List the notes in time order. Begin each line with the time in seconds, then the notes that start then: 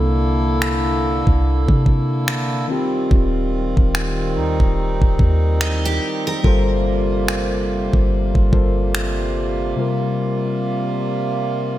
Already playing: C2 C3 D3 A#3 D4 E4 A4
0.62 finger snap
1.27 C2, kick
1.68 C3, kick
1.86 kick
2.28 finger snap
2.68 D#3 G3 C4 F4
2.72 G4
3.11 D#1, kick
3.77 D#1, kick
3.95 finger snap
4.35 D#2 D#4
4.60 D#1, kick
5.02 D#1, kick
5.19 D#2, kick
5.61 D#4, finger snap
5.85 G4
6.27 A#4
6.43 G1 C3 G3 A#3 F4 A4 A#4, kick
6.47 C5
7.28 finger snap
7.93 G1, kick
8.35 G1, kick
8.52 G1 G3 F4 A4 A#4 C5, kick
8.95 finger snap
9.76 C3 G3 F4
9.80 A#4